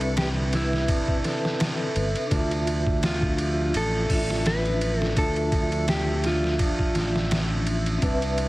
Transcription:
Already playing: C2 C3 C4 D4 A4 B4 E5
0.01 ride
0.17 G4, snare, ride
0.53 E4 G4, snare, ride
0.73 snare
0.88 D4, kick, ride
1.08 kick
1.24 A4, snare, ride
1.45 snare
1.59 A4, snare, ride
1.96 G1, ride
2.15 ride
2.27 D4
2.31 D2 F3 D4 F4 E5, kick, ride
2.36 E5
2.51 ride
2.67 ride
2.87 kick
3.03 F4, snare, ride
3.22 kick
3.38 G4, ride
3.74 A1 D4 A4, ride
4.05 D4
4.10 A1 F4, kick, open hi-hat
4.14 E5
4.30 snare
4.46 B4, snare, ride
4.65 ride
4.81 ride
5.01 A4, snare
5.13 D4
5.17 D2 D4 F4 A4, kick, ride
5.22 E5
5.36 ride
5.52 kick, ride
5.72 ride
5.88 G4, snare, ride
6.24 F4 G4, snare, ride
6.44 snare
6.59 D4, kick, ride
6.79 kick
6.95 A1, snare, ride
7.16 snare
7.31 snare, ride
7.67 ride
7.86 ride
7.98 C4 D4, kick, ride
8.03 C2 C3 B4
8.08 E5
8.22 ride
8.38 ride

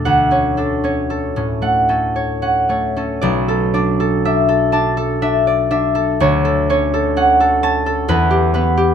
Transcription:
Already playing: A3 D4 A4 D5
0.05 D2 F#5
0.31 C#4 C#5
0.57 D4 A4
0.84 C#4 C#5
1.10 A4
1.36 A2 C#4
1.62 A3 F#5
1.89 C#4 A4
2.16 C#5
2.42 C#4 F#5
2.69 A3 C#5
2.96 C#4 A4
3.21 B1 D5
3.48 A4
3.74 D4 D5
4.00 A4
4.25 D4 E5
4.49 A4
4.72 D4 A5
4.97 A4
5.22 D4 E5
5.47 D5
5.71 D4 E5
5.95 A4
6.20 D2 C#5
6.45 A4
6.70 C#4 C#5
6.94 A4
7.17 C#4 F#5
7.40 A4
7.63 C#4 A5
7.86 A4
8.08 E2 B4
8.31 G4
8.54 B3 B4
8.77 G4

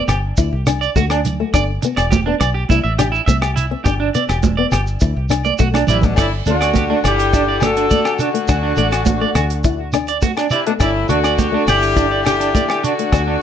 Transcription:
Already playing: B3
0.08 G1 G4, cross-stick, closed hi-hat, muted conga, low agogo, shekere
0.37 D2 E4, kick, muted conga, shekere
0.53 C2
0.67 D4, cross-stick, closed hi-hat, muted conga, low agogo, shekere
0.81 D5, shekere
0.96 D2 A3 F#4, kick, high conga, shekere
1.10 D4, cross-stick, low agogo
1.25 closed hi-hat, low conga, shekere
1.40 A3
1.54 G1 D4 D5, kick, cross-stick, muted conga, low agogo, shekere
1.82 B3, muted clean electric guitar stroke, closed hi-hat, shekere
1.96 E1 D5, cross-stick, low agogo, shekere
2.11 G4, kick, high conga, shekere
2.26 B3 D4
2.40 B1 D5, cross-stick, closed hi-hat, muted conga, low agogo, shekere
2.54 G4
2.69 C2 E4, kick, muted conga, high conga, shekere
2.84 A1 E5
2.98 D4 G4, cross-stick, closed hi-hat, muted conga, low agogo, shekere
3.12 E4, shekere
3.26 C2 C4 E5, kick, high conga, shekere
3.42 G4, cross-stick, low agogo
3.56 E4, closed hi-hat, shekere
3.71 C4
3.84 G1 D4 G4, kick, cross-stick, muted conga, low agogo, shekere
4.00 D4
4.14 B3 D5, closed hi-hat, shekere
4.29 E1 G4, cross-stick, low agogo, shekere
4.43 kick, high conga, low conga, shekere
4.57 B3 D5
4.72 G1 G4, cross-stick, closed hi-hat, muted conga, low agogo, shekere
4.87 shekere
5.00 D2 E4, kick, muted conga, shekere
5.17 C2
5.30 D4, cross-stick, closed hi-hat, muted conga, low agogo, shekere
5.45 D5, high conga, shekere
5.58 B1 A3 F#4, kick, high conga, shekere
5.74 D4, cross-stick, high conga, low agogo
5.87 A1 C3 C4 E4 D5, closed hi-hat, low conga, shekere
6.02 B2 A3 B3 D4, kick, low conga, shekere
6.16 G1 A2 A3 D4 E4 D5, kick, cross-stick, crash, muted conga, low agogo, shekere
6.45 D2 D3 A3 D4, closed hi-hat, muted conga, shekere
6.49 D4 F#4
6.61 D5, cross-stick, closed hi-hat, low agogo, shekere
6.74 G4, kick, closed hi-hat, high conga, shekere
6.90 A3 D4
7.04 G1 D3 E4 G4 D5, cross-stick, closed hi-hat, low agogo, shekere
7.19 G4, closed hi-hat, shekere
7.32 D4 E4, kick, closed hi-hat, muted conga, shekere
7.49 D5
7.60 D3 D4 F#4 G4 A4, cross-stick, closed hi-hat, high conga, low agogo, shekere
7.76 D4, closed hi-hat, shekere
7.91 A3 D5, kick, closed hi-hat, high conga, shekere
8.05 G4, cross-stick, low agogo
8.19 D3 D4 F#4, closed hi-hat, muted conga, shekere
8.34 A3, closed hi-hat
8.48 D2 D4 F#4, kick, cross-stick, closed hi-hat, muted conga, low agogo, shekere
8.63 D4
8.77 A1 A3 D5, closed hi-hat, muted conga, shekere
8.92 F#4, cross-stick, closed hi-hat, low agogo, shekere
9.05 kick, closed hi-hat, high conga, shekere
9.21 A3 D5
9.35 D2 F#4, cross-stick, closed hi-hat, low agogo, shekere
9.50 closed hi-hat, shekere
9.64 E4, kick, closed hi-hat, muted conga, shekere
9.93 D4, cross-stick, closed hi-hat, low agogo, shekere
10.08 D5, closed hi-hat, shekere
10.22 A3 F#4, kick, closed hi-hat, high conga, shekere
10.37 D4, cross-stick, low agogo
10.50 C3 C4 E4 D5, closed hi-hat, muted conga, shekere
10.66 B2 A3 B3 D4, closed hi-hat
10.80 G1 A2 A3 D4 E4 D5, kick, cross-stick, closed hi-hat, muted conga, low agogo, shekere
11.09 D2 D3 A3 D4 F#4, closed hi-hat, muted conga, shekere
11.24 D5, cross-stick, closed hi-hat, low agogo, shekere
11.38 G4, kick, closed hi-hat, high conga, shekere
11.52 A3 D4
11.67 G1 D3 E4 G4 D5, cross-stick, closed hi-hat, low agogo, shekere
11.83 G4, closed hi-hat, shekere
11.96 D4 E4, kick, closed hi-hat, muted conga, shekere
12.11 D5
12.25 D3 D4 E4 G4, cross-stick, closed hi-hat, low agogo, shekere
12.40 D4, closed hi-hat, shekere
12.55 A3 D5, kick, closed hi-hat, high conga, shekere
12.69 G4, cross-stick, low agogo
12.83 D3 D4 F#4, closed hi-hat, muted conga, shekere
12.99 A3, closed hi-hat
13.12 D2 D4 F#4, kick, cross-stick, closed hi-hat, muted conga, low agogo, shekere
13.27 D4

